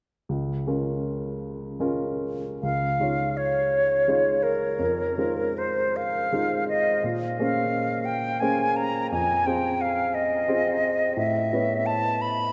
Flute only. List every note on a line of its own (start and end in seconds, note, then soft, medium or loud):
2.62 3.39 F5 soft
3.37 4.44 C#5 medium
4.43 5.60 A#4 soft
5.58 5.98 C5 soft
5.96 6.68 F5 medium
6.69 7.03 D#5 soft
7.40 8.07 F5 medium
8.05 8.42 G5 medium
8.40 8.78 G#5 medium
8.76 9.11 A#5 medium
9.12 9.48 G#5 medium
9.46 9.83 G5 medium
9.81 10.16 F5 medium
10.15 11.17 D#5 medium
11.17 11.88 E5 medium
11.86 12.23 A5 medium
12.22 12.53 B5 medium